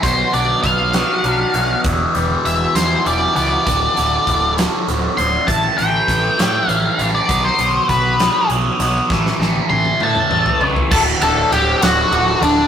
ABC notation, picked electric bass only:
X:1
M:6/8
L:1/8
Q:3/8=66
K:D
V:1 name="Picked electric bass" clef=bass
B,,, B,,, B,,,2 B,,, B,,, | E,,, E,,, E,,, E,, E,,, C,, | D,,, D,,, D,,,2 D,,, D,,, | A,,, A,,, A,,, A,, A,,, A,,, |
B,,, B,,, B,,,2 B,,, B,,, | A,,, A,,, A,,, A,, A,,, C,, | D,,, D,,, D,,, D,,, D,,, D,,, |]